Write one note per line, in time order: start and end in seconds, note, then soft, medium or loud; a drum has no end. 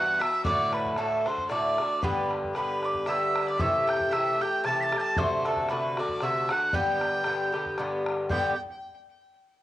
0.00 0.21 G2 medium
0.00 0.22 E3 medium
0.00 0.20 B3 medium
0.00 0.19 F#4 medium
0.00 0.22 F#5 medium
0.00 0.23 F#6 loud
0.06 0.19 F#5 medium
0.19 0.44 E3 soft
0.19 0.45 B3 soft
0.19 0.45 F#4 soft
0.19 0.43 E5 medium
0.19 0.45 E5 medium
0.19 0.44 E6 loud
0.19 bodhran medium
0.44 0.96 A2 medium
0.44 0.98 D3 medium
0.44 0.97 A3 medium
0.44 0.98 F#4 loud
0.44 0.71 D5 medium
0.44 0.75 D5 medium
0.44 0.75 D6 loud
0.44 bodhran medium
0.73 0.96 B4 medium
0.73 0.99 B5 loud
0.73 bodhran medium
0.86 bodhran soft
0.96 1.26 A2 medium
0.96 1.26 D3 medium
0.96 1.27 A3 medium
0.96 1.25 F#4 medium
0.96 1.27 A4 medium
0.96 1.51 A4 medium
0.96 1.29 A5 loud
0.96 bodhran medium
1.26 1.49 D3 soft
1.26 1.50 A3 medium
1.26 1.50 F#4 medium
1.26 1.49 C5 medium
1.26 1.50 C6 loud
1.26 bodhran medium
1.38 bodhran soft
1.49 1.78 A2 medium
1.49 1.78 D3 medium
1.49 1.78 A3 medium
1.49 1.77 F#4 medium
1.49 2.04 D5 medium
1.49 1.99 D5 medium
1.49 2.05 D6 medium
1.49 bodhran medium
1.78 2.02 D3 soft
1.78 2.03 A3 soft
1.78 2.02 F#4 soft
1.78 bodhran medium
2.02 2.54 G2 medium
2.02 2.55 D3 medium
2.02 2.56 B3 medium
2.02 2.57 G4 medium
2.02 2.31 B4 medium
2.02 2.29 B4 medium
2.02 2.31 B5 medium
2.02 bodhran medium
2.31 bodhran medium
2.44 bodhran soft
2.54 3.06 G2 soft
2.54 3.07 D3 medium
2.54 3.07 B3 medium
2.54 3.10 G4 medium
2.54 3.08 B4 medium
2.54 2.82 B4 medium
2.54 2.87 B5 medium
2.54 bodhran medium
2.83 3.08 D5 medium
2.83 3.11 D6 medium
2.83 bodhran soft
2.94 bodhran soft
3.06 3.59 G2 medium
3.06 3.60 D3 medium
3.06 3.60 B3 medium
3.06 3.59 G4 medium
3.06 3.49 E5 medium
3.06 3.48 E6 loud
3.06 bodhran medium
3.36 bodhran medium
3.47 3.60 D5 medium
3.47 3.62 D6 loud
3.57 4.11 C3 medium
3.57 4.12 E3 medium
3.57 4.14 A3 medium
3.57 4.12 G4 medium
3.57 3.85 E5 medium
3.57 3.89 E5 medium
3.57 3.91 E6 loud
3.57 bodhran medium
3.87 4.14 G5 medium
3.87 4.10 G5 medium
3.87 4.14 G6 loud
3.87 bodhran medium
4.00 bodhran soft
4.11 4.41 C3 medium
4.11 4.41 E3 medium
4.11 4.41 A3 medium
4.11 4.40 G4 medium
4.11 4.38 E5 medium
4.11 4.43 E5 medium
4.11 4.43 E6 loud
4.11 bodhran medium
4.41 4.64 E3 soft
4.41 4.65 A3 soft
4.41 4.65 G4 medium
4.41 4.63 G5 medium
4.41 4.65 G5 medium
4.41 4.67 G6 loud
4.41 bodhran soft
4.64 4.93 C3 medium
4.64 4.93 E3 medium
4.64 4.93 A3 medium
4.64 4.91 G4 medium
4.64 4.81 A5 medium
4.64 4.82 A6 loud
4.64 bodhran medium
4.80 4.98 A5 loud
4.80 4.98 A5 medium
4.80 4.99 A6 loud
4.80 4.85 B6 medium
4.92 5.17 E3 soft
4.92 5.17 A3 soft
4.92 5.17 G4 soft
4.92 bodhran medium
4.98 5.16 A5 medium
4.98 5.20 A5 loud
4.98 5.01 G6 medium
4.98 5.20 A6 loud
5.17 5.68 C3 medium
5.17 5.70 D3 medium
5.17 5.70 A3 loud
5.17 5.70 F#4 medium
5.17 5.44 C5 medium
5.17 5.48 C5 medium
5.17 5.48 C6 loud
5.17 bodhran medium
5.45 5.68 A4 medium
5.45 5.72 A4 medium
5.45 5.72 A5 loud
5.45 bodhran medium
5.57 bodhran soft
5.69 5.98 C3 medium
5.69 5.98 D3 medium
5.69 5.98 A3 medium
5.69 5.96 F#4 medium
5.69 5.96 B4 medium
5.69 6.00 B4 medium
5.69 6.01 B5 medium
5.69 bodhran medium
5.97 6.21 D3 soft
5.97 6.22 A3 soft
5.97 6.21 F#4 soft
5.97 6.24 D5 medium
5.97 6.23 D5 medium
5.97 6.25 D6 medium
5.97 bodhran medium
6.09 bodhran soft
6.21 6.50 C3 medium
6.21 6.50 D3 medium
6.21 6.49 A3 medium
6.21 6.48 F#4 medium
6.21 6.52 E5 medium
6.21 6.49 E5 medium
6.21 6.53 E6 loud
6.21 bodhran medium
6.49 6.72 D3 soft
6.49 6.74 A3 soft
6.49 6.74 F#4 soft
6.49 6.72 F#5 medium
6.49 6.76 F#5 medium
6.49 6.76 F#6 loud
6.49 bodhran medium
6.73 7.23 G2 medium
6.73 7.25 D3 medium
6.73 7.25 B3 medium
6.73 7.26 G4 loud
6.73 7.79 G5 medium
6.73 7.75 G5 medium
6.73 7.79 G6 loud
6.73 bodhran medium
7.01 bodhran medium
7.24 7.53 G2 medium
7.24 7.54 D3 medium
7.24 7.53 B3 medium
7.24 7.51 G4 medium
7.24 bodhran medium
7.52 7.78 D3 soft
7.52 7.78 B3 medium
7.52 7.77 G4 medium
7.52 bodhran soft
7.66 bodhran soft
7.78 8.28 G2 medium
7.78 8.30 D3 medium
7.78 8.31 B3 medium
7.78 8.32 G4 medium
7.78 bodhran medium
8.06 bodhran medium
8.29 8.53 G2 medium
8.29 8.53 D3 medium
8.29 8.54 B3 loud
8.29 8.54 G4 medium
8.29 8.57 G5 medium
8.29 8.57 G5 loud
8.29 8.57 G6 medium
8.29 bodhran medium